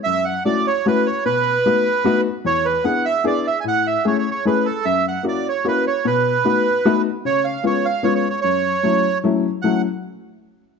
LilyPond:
<<
  \new Staff \with { instrumentName = "Bandoneon" } { \time 3/4 \key fis \minor \tempo 4 = 150 e''8 fis''8 d''8 cis''8 b'8 cis''8 | b'2~ b'8 r8 | cis''8 b'8 fis''8 e''8 d''8 e''16. gis''32 | fis''8 e''8 \tuplet 3/2 { cis''8 cis''8 cis''8 } b'8 a'8 |
e''8 fis''8 d''8 cis''8 b'8 cis''8 | b'2~ b'8 r8 | cis''8 eis''8 cis''8 eis''8 \tuplet 3/2 { cis''8 cis''8 cis''8 } | cis''2 r4 |
fis''8 r2 r8 | }
  \new Staff \with { instrumentName = "Upright piano" } { \time 3/4 \key fis \minor fis,4 <a cis' e' fis'>8 r8 <a cis' e' fis'>8 r8 | b,4 <a b dis' fis'>8 r8 <a b dis' fis'>8 r8 | e,4 <b d' e' gis'>8 r8 <b d' e' gis'>8 r8 | a,4 <a cis' e' gis'>8 r8 <a cis' e' gis'>8 r8 |
fis,4 <ais cis' e' fis'>8 r8 <ais cis' e' fis'>8 r8 | b,4 <a b dis' fis'>8 r8 <a b dis' fis'>8 r8 | cis4 <gis b cis' eis'>8 r8 <gis b cis' eis'>8 r8 | fis,4 <fis a cis' e'>8 r8 <fis a cis' e'>8 r8 |
<fis a cis' e'>8 r2 r8 | }
>>